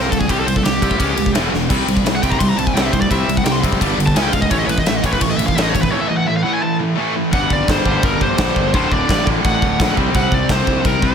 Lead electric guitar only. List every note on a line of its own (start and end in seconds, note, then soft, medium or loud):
0.01 0.11 A#4 medium
0.12 0.19 A4 medium
0.20 0.29 G#4 medium
0.31 0.39 G4 medium
0.40 0.48 A4 medium
0.47 0.55 C5 loud
0.56 0.64 A4 medium
0.64 1.31 G4 medium
2.15 2.23 F#5 medium
2.23 2.32 G5 loud
2.30 2.39 A#5 medium
2.39 2.48 C6 loud
2.49 2.58 A#5 medium
2.57 2.66 A5 loud
2.66 2.75 G#5 medium
2.75 2.85 G5 medium
2.85 2.93 E5 medium
2.92 3.00 C5 medium
3.01 3.10 D5 medium
3.10 3.35 E5 medium
3.38 3.45 F#5 medium
3.45 3.54 G5 medium
3.52 3.58 C6 loud
4.06 4.15 A5 medium
4.15 4.23 G#5 medium
4.23 4.33 G5 loud
4.33 4.42 F5 loud
4.41 4.50 D#5 medium
4.51 4.57 C#5 medium
4.59 4.66 D#5 loud
4.66 4.78 B4 medium
4.66 4.70 C#5 medium
4.79 4.87 D#5 loud
4.87 4.96 E5 loud
4.96 5.04 D#5 loud
5.06 5.13 C#5 medium
5.13 5.21 B4 medium
5.21 5.30 C#5 loud
5.30 5.37 D#5 medium
5.37 5.46 E5 loud
5.47 5.55 F5 loud
5.55 5.63 E5 medium
5.63 5.73 D#5 medium
5.69 5.80 C#5 medium
5.82 5.90 B4 medium
5.90 6.00 C#5 medium
6.01 6.08 E5 loud
6.09 6.17 D#5 loud
6.17 6.26 F#5 loud
6.28 6.36 E5 medium
6.36 6.43 F5 loud
6.43 6.52 F#5 loud
6.53 6.62 G#5 medium
6.63 6.73 A5 loud
7.33 7.51 F#5 loud
7.53 7.69 D5 loud
7.69 8.04 C5 loud
8.04 8.22 A#4 loud
8.22 8.70 C5 loud
8.75 8.92 C5 loud
8.92 9.27 D5 loud
9.45 9.94 F#5 loud
10.16 10.33 F#5 loud
10.34 10.49 D5 loud
10.51 10.87 C5 loud
10.86 11.02 A#4 loud
11.03 11.15 C5 loud